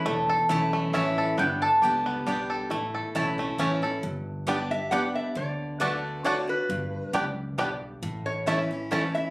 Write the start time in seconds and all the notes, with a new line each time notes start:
Already playing: C#4 E4
0.06 E1 E2 A3 A4
0.29 A4
0.49 B1 E3 A3 C#4 E4 C#5 A5
0.73 A3
0.93 A1 E3 A3 C#4 E4 C#5 E5 A5
1.18 A4
1.37 G1 G2 B3 D4 G5
1.62 A4 A5
1.82 C#2 G3 B3 D4 G4 D5 G5
2.06 B3
2.26 B1 G3 B3 D4 G4 D5 G5
2.50 A4
2.70 A1 A2 A3 E4
2.95 A4
3.15 B1 E3 A3 C#4 E4 C#5 A5
3.38 A3 C#4 E4
3.58 A1 E3 A3 C#4 E4 C#5 A5
3.82 C#4 E4 A4
4.03 G1 G2
4.47 G3 B3 D4 G4 D5 G5
4.71 D4 G4 E5
4.91 G3 B3 D4 G4 D5 F#5 G5
5.15 E5
5.35 D2 D3 D5
5.80 D3 A3 D4 F#4 B4 D5 A5
6.24 D3 A3 D4 F#4 C#5 D5 A5
6.47 D4 F#4 B4
6.69 G1 G2
7.13 C#2 F#2 B3 D4 G4 D5 G5
7.58 B1 G2 B3 D4 G4 D5 G5
8.02 A1 A2
8.26 C#5
8.46 E3 A3 C#4 E4 C#5 E5 A5
8.71 C#4 E4
8.91 E3 A3 C#4 E4 C#5 A5
9.15 C#4 E4 E5